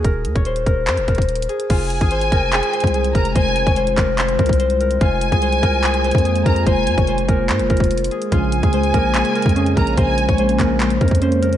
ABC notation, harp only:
X:1
M:4/4
L:1/16
Q:1/4=145
K:Fphr
V:1 name="Harp"
B3 d c2 B2 c2 B4 A2 | F3 A c2 B2 A2 c2 A2 B2 | c3 d c2 B2 c2 B2 c2 B2 | F3 A c2 B2 A2 c2 A2 B2 |
c3 d c2 B2 c2 B4 A2 | F3 A c2 B2 A2 B2 A2 B2 | c3 d c2 B2 c2 B2 c2 B2 |]